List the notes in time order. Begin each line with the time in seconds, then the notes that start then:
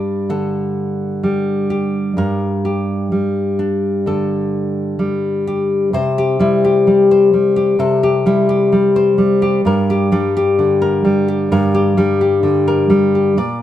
Already playing: G2 G3 D4 G4 A#4
0.29 D3 A4
1.23 G3
1.70 G4
2.17 G2 A#4
2.65 G4
3.12 G3
3.59 D4
4.06 D3 A4
4.99 G3
5.47 G4
5.93 C3 C5
6.18 G4
6.39 G3 E4
6.65 G4
6.87 G3
7.11 C5
7.33 G3
7.56 G4
7.79 C3 A4
8.03 G4
8.26 G3 E4
8.49 G4
8.72 G3
8.96 C5
9.18 G3
9.42 G4
9.65 G2 A#4
9.90 G4
10.12 G3 D4
10.37 G4
10.59 D3
10.82 A#4
11.05 G3
11.28 G4
11.52 G2 A#4
11.75 G4
11.97 G3 D4
12.21 G4
12.43 D3
12.68 A#4
12.90 G3
13.15 G4
13.37 A#2 D5